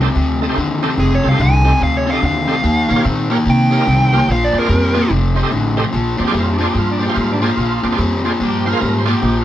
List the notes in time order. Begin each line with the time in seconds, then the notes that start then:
0.01 F2 C3 D#4 G4 A4 C5
0.15 D2 F2 C3
0.42 F2 C3 A4 D#5
0.49 D#4 G4 A4 C5
0.57 D#2 F2 D3
0.82 F2 C3 D#4 G4 A4 C5
0.97 F1 F2 C3 G#4
1.15 C#5
1.23 C2 F2 C3 A4 C5
1.29 D#4 G4 A4 C5 F5
1.39 C2 F2 D3 G#5
1.64 F2 C3 D#4 G4 A4 C5
1.80 D2 F2 C3 F5
1.97 C#5
2.06 F2 C3 A4 C5
2.10 D#4 G4 A4 D#5 F5
2.22 D#2 F2 D3 F5
2.47 F2 C3 D#4 G4 A4 C5
2.63 D#2 D#3 A#3
2.88 A#2 D#3 A#3 A#4 C#5
2.95 F4 G4 A#4 C#5
3.03 A#2 D#3 C4
3.30 D#3 A#3 F4 G4 A#4 C#5
3.45 C3 D#3 A#3
3.50 G5
3.71 D#3 A#3 A#4 C#5
3.77 F4 G4 A#4 D#5
3.87 C2 D#3 C4
4.13 D#3 A#3 F4 G4 A#4 C5
4.28 A#1 A#2 F3 F5
4.44 D5
4.53 F2 A#2 F3 C5 D5
4.59 F4 G#4 A#4 C5 D5
4.69 F2 A#2 G3
4.94 A#2 F3 F4 G#4 C5 D5
5.10 F1 F2 C3
5.35 F2 C3 C5 D#5
5.43 G4 A4 C5 D#5
5.52 A1 F2 D3
5.76 F2 C3 G4 A4 C5 D#5
5.92 A#1 A#2 F3
6.17 F2 A#2 F3 C5 D5
6.24 F4 G4 G#4 C5 D5
6.32 F2 A#2 G3
6.39 F4
6.53 D4
6.58 A#2 F3 F4 G#4 C5 D5
6.68 G4
6.74 G2 A#2 F3
6.79 F4
6.91 D4
7.00 A#2 F3 C5 D5
7.06 F4 G4 G#4 C5 F5
7.14 G#2 A#2 G3
7.21 F4
7.32 D4
7.41 A#2 F3 F4 G#4 C5 D5
7.47 F4
7.57 A#1 A#2 F3
7.83 F2 A#2 F3 C5 D5
7.92 F4 G#4 C5 D5
7.98 F2 A#2 G3
8.24 A#2 F3 F4 G#4 C5 D5
8.40 G2 A#2 F3 G4
8.65 A#2 F3 C5 F5
8.70 F4 G#4 A#4 C5 F5
8.81 G#2 A#2 G3
8.98 C5
9.05 A#2 F3 F4 F#4 G#4 C5 D5
9.13 G4
9.22 A#1 A#2 F3
9.41 F4